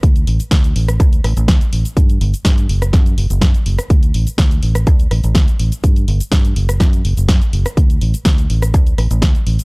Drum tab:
HH |xxoxxxoxxxoxxxox|xxoxxxoxxxoxxxox|xxoxxxoxxxoxxxox|xxoxxxoxxxoxxxox|
SH |xx-xxx-xxx-xxx-x|xx-xxx-xxx-xxx-x|xx-xxx-xxx-xxx-x|xx-xxx-xxx-xxx-x|
SD |----o--r--r-o---|----o--ro---o--r|----o--r--r-o---|----o--ro---o--r|
BD |o---o---o---o---|o---o---o---o---|o---o---o---o---|o---o---o---o---|

HH |xxoxxxoxxxoxxxox|
SH |xx-xxx-xxx-xxx-x|
SD |----o--r--r-o---|
BD |o---o---o---o---|